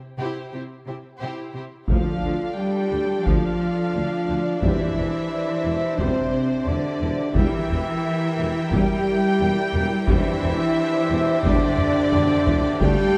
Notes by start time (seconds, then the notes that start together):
0.18 C3 E4 G4 C5
0.52 C3 E4 G4 C5
0.87 C3 E4 G4 C5
1.20 C3 E4 G4 C5
1.54 C3 E4 G4 C5
1.88 D2 D3 F3 D4 F4 A4 D5 F5, taiko
2.23 D2 D3
2.56 G3 G4 G5
2.92 D2 D3
3.24 D2 F3 F4 F5, taiko
3.93 D2 D3
4.27 D2 D3
4.61 E1 E2 E3 G3 E4 G4 C5 E5, taiko
4.96 E1 E2 E3
5.65 E1 E2 E3
5.98 E1 E2 C3 G3 C4 C5, taiko
6.66 E1 E2 D3 D4 D5
7.00 E1 E2 E3
7.34 E1 E2 E3 G3 E4 A#4 E5 G5, taiko
7.70 E1 E2 E3
8.37 E1 E2 E3
8.71 E1 E2 G3 G4 G5, taiko
9.39 E1 E2 E3
9.74 E1 E2 E3
10.07 E1 E2 E3 G3 D4 E4 G4 C5 E5, taiko
10.42 E1 E2 E3
11.10 E1 E2 E3
11.43 E1 E2 D3 G3 D4 D5, taiko
11.78 taiko low-mid
12.12 E1 E2 D3, taiko low-mid
12.46 E1 E2 E3, taiko low
12.80 D2 G3 A3 G4 A4 D5 F5 G5 A5, taiko